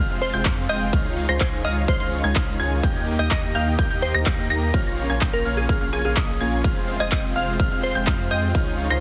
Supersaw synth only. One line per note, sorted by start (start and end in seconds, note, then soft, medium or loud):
0.10 0.31 G#3 medium
0.10 0.31 C4 medium
0.10 0.31 F4 medium
0.10 0.31 C5 medium
0.10 0.31 F5 medium
0.33 0.44 G#3 medium
0.33 0.44 C4 medium
0.33 0.44 F4 medium
0.33 0.44 C5 medium
0.33 0.44 G5 loud
0.45 0.66 G#3 loud
0.45 0.66 C4 medium
0.45 0.66 F4 medium
0.45 0.66 C5 medium
0.69 0.90 G#3 loud
0.69 0.90 C4 medium
0.69 0.90 F4 medium
0.69 0.90 C5 medium
0.69 0.90 G5 loud
0.93 1.26 G#3 medium
0.93 1.26 D#4 medium
0.93 1.26 F4 medium
0.93 1.26 C#5 medium
0.93 1.26 F5 medium
1.29 1.38 G#3 medium
1.29 1.38 D#4 medium
1.29 1.38 F4 medium
1.29 1.38 C#5 medium
1.29 1.38 A#5 medium
1.64 1.85 G#3 medium
1.64 1.85 D#4 medium
1.64 1.85 F4 medium
1.64 1.85 C#5 medium
1.64 1.85 F5 medium
1.88 1.97 G#3 loud
1.88 1.97 D#4 medium
1.88 1.97 F4 medium
1.88 1.97 C#5 medium
2.00 2.21 G#3 medium
2.00 2.21 D#4 medium
2.00 2.21 F4 medium
2.00 2.21 C#5 medium
2.00 2.21 F5 medium
2.24 2.34 G#3 medium
2.24 2.34 D#4 medium
2.24 2.34 F4 medium
2.24 2.34 C#5 medium
2.24 2.34 G#5 loud
2.36 2.57 G#3 loud
2.36 2.57 D#4 medium
2.36 2.57 F4 medium
2.36 2.57 F5 loud
2.60 2.81 G#3 loud
2.60 2.81 D#4 medium
2.60 2.81 F4 medium
2.60 2.81 C#5 medium
2.60 2.81 G#5 loud
2.83 3.16 G4 medium
3.19 3.28 A#3 medium
3.19 3.28 D#4 medium
3.19 3.28 G4 medium
3.19 3.28 D#5 medium
3.19 3.28 G5 medium
3.31 3.52 A#3 medium
3.31 3.52 D#4 medium
3.31 3.52 A#5 medium
3.55 3.75 A#3 medium
3.55 3.75 D#4 medium
3.55 3.75 G4 medium
3.55 3.75 D#5 medium
3.55 3.75 G5 loud
3.79 3.88 A#3 loud
3.79 3.88 D#4 medium
3.79 3.88 G4 medium
3.79 3.88 G5 loud
3.91 4.12 A#3 medium
3.91 4.12 D#4 medium
3.91 4.12 G4 medium
3.91 4.12 D#5 medium
3.91 4.12 G5 medium
4.14 4.25 A#3 medium
4.14 4.25 D#4 medium
4.14 4.25 G4 medium
4.14 4.25 D#5 medium
4.14 4.25 A#5 loud
4.26 4.47 A#3 loud
4.50 4.71 A#3 medium
4.50 4.71 D#4 medium
4.50 4.71 G4 medium
4.50 4.71 D#5 medium
4.50 4.71 A#5 loud
4.74 5.07 A#3 medium
4.74 5.07 C#4 medium
4.74 5.07 F4 medium
4.74 5.07 C#5 medium
4.74 5.07 F5 medium
5.10 5.19 A#3 medium
5.10 5.19 C#4 medium
5.10 5.19 F4 medium
5.10 5.19 C#5 medium
5.10 5.19 G#5 medium
5.22 5.42 G5 medium
5.45 5.66 A#3 medium
5.45 5.66 C#4 medium
5.45 5.66 F4 medium
5.45 5.66 C#5 medium
5.45 5.66 F5 medium
5.69 5.78 A#3 loud
5.69 5.78 C#4 medium
5.69 5.78 F4 medium
5.69 5.78 C#5 medium
5.69 5.78 F5 loud
5.81 5.91 A#3 medium
5.81 5.91 C#4 medium
5.81 5.91 F4 medium
5.81 5.91 C#5 medium
5.81 5.91 F5 medium
5.93 6.02 A#3 medium
5.93 6.02 C#4 medium
5.93 6.02 F4 medium
5.93 6.02 C#5 medium
5.93 6.02 G#5 medium
6.05 6.14 A#3 medium
6.05 6.14 C#4 medium
6.05 6.14 F4 medium
6.05 6.14 C#5 medium
6.05 6.14 F5 medium
6.41 6.62 A#3 medium
6.41 6.62 C#4 medium
6.41 6.62 F4 medium
6.41 6.62 C#5 medium
6.41 6.62 G#5 loud
6.64 6.97 G#3 medium
6.64 6.97 F4 medium
6.64 6.97 C5 medium
6.64 6.97 F5 medium
7.00 7.09 G#3 medium
7.00 7.09 C4 medium
7.00 7.09 F4 medium
7.00 7.09 C5 medium
7.00 7.09 G#5 medium
7.12 7.33 C4 medium
7.12 7.33 F4 medium
7.12 7.33 G5 medium
7.36 7.56 G#3 medium
7.36 7.56 C4 medium
7.36 7.56 F4 medium
7.36 7.56 C5 medium
7.36 7.56 F5 medium
7.60 7.69 G#3 loud
7.60 7.69 C4 medium
7.60 7.69 C5 medium
7.71 7.92 G#3 medium
7.71 7.92 C4 medium
7.71 7.92 F4 medium
7.71 7.92 C5 medium
7.71 7.92 F5 medium
7.95 8.05 G#3 loud
7.95 8.05 C4 medium
7.95 8.05 F4 medium
7.95 8.05 C5 medium
7.95 8.05 G5 loud
8.07 8.28 G#3 loud
8.07 8.28 C4 medium
8.07 8.28 F4 medium
8.07 8.28 C5 medium
8.07 8.28 F5 loud
8.31 8.52 G#3 medium
8.31 8.52 C4 medium
8.31 8.52 F4 medium
8.31 8.52 C5 medium
8.31 8.52 G5 loud
8.55 8.88 G#3 medium
8.55 8.88 D#4 medium
8.55 8.88 F4 medium
8.55 8.88 C#5 medium
8.55 8.88 F5 medium
8.90 9.00 G#3 medium
8.90 9.00 D#4 medium
8.90 9.00 F4 medium
8.90 9.00 C#5 medium
8.90 9.00 A#5 medium